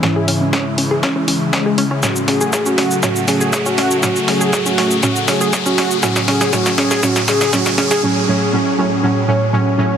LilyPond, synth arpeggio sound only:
\new Staff \with { instrumentName = "Synth arpeggio sound" } { \time 4/4 \key fis \dorian \tempo 4 = 120 cis'16 gis'16 cis'16 cis'16 cis'16 r16 cis'16 gis'16 cis'16 cis'16 cis'16 r16 cis'16 gis'16 cis'16 cis'16 | cis'16 r16 cis'16 gis'16 gis'16 cis'16 cis'16 r16 cis'16 r16 cis'16 gis'16 gis'16 cis'16 cis'16 r16 | cis'16 r16 cis'16 gis'16 gis'16 cis'16 cis'16 r16 cis'16 r16 cis'16 gis'16 gis'16 cis'16 cis'16 r16 | cis'16 r16 cis'16 gis'16 cis'16 r16 cis'16 gis'16 cis'16 r16 cis'16 gis'16 cis'16 r16 cis'16 gis'16 |
r1 | }